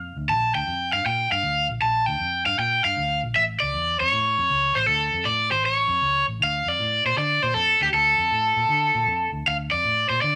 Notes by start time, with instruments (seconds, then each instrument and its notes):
Already playing: fingered electric bass F2, overdriven electric guitar F5
0.16 fingered electric bass D2
0.29 fingered electric bass A#1, overdriven electric guitar A5
0.54 fingered electric bass D2, overdriven electric guitar G5
0.67 fingered electric bass F2
0.93 fingered electric bass G2, overdriven electric guitar F5
1.05 fingered electric bass A#2, overdriven electric guitar G5
1.31 fingered electric bass G2, overdriven electric guitar F5
1.43 fingered electric bass D2
1.70 fingered electric bass A#1
1.82 fingered electric bass A#1, overdriven electric guitar A5
2.06 fingered electric bass D2, overdriven electric guitar G5
2.20 fingered electric bass F2
2.46 fingered electric bass G2, overdriven electric guitar F5
2.58 fingered electric bass A#2, overdriven electric guitar G5
2.84 fingered electric bass G2, overdriven electric guitar F5
2.97 fingered electric bass D2
3.23 fingered electric bass A#1
3.36 fingered electric bass A1, overdriven electric guitar E5
3.60 fingered electric bass C#2, overdriven electric guitar D5
3.74 fingered electric bass E2
4.00 fingered electric bass F2, overdriven electric guitar C#5
4.12 fingered electric bass A2
4.38 fingered electric bass F2
4.50 fingered electric bass C#2
4.75 fingered electric bass A1, overdriven electric guitar C5
4.86 fingered electric bass D2, overdriven electric guitar A4
5.13 fingered electric bass F2
5.25 fingered electric bass A2, overdriven electric guitar D5
5.50 fingered electric bass G#1, overdriven electric guitar C5
5.62 fingered electric bass A1, overdriven electric guitar C#5
5.88 fingered electric bass F2
6.01 fingered electric bass C#2
6.28 fingered electric bass A1
6.40 fingered electric bass D2, overdriven electric guitar F5
6.66 fingered electric bass F2, overdriven electric guitar D5
6.79 fingered electric bass A2
7.05 fingered electric bass A#2, overdriven electric guitar C5
7.17 fingered electric bass D3, overdriven electric guitar D5
7.43 fingered electric bass A#2, overdriven electric guitar C5
7.54 fingered electric bass F2, overdriven electric guitar A4
7.81 fingered electric bass D2, overdriven electric guitar G4
7.93 fingered electric bass D2, overdriven electric guitar A4
8.18 fingered electric bass F2
8.31 fingered electric bass A2
8.56 fingered electric bass A#2
8.69 fingered electric bass D3
8.95 fingered electric bass A#2
9.07 fingered electric bass F2
9.32 fingered electric bass D2
9.46 fingered electric bass D2, overdriven electric guitar F5
9.71 fingered electric bass F2, overdriven electric guitar D5
9.84 fingered electric bass A2
10.09 fingered electric bass A#2, overdriven electric guitar C5
10.22 fingered electric bass D3, overdriven electric guitar D5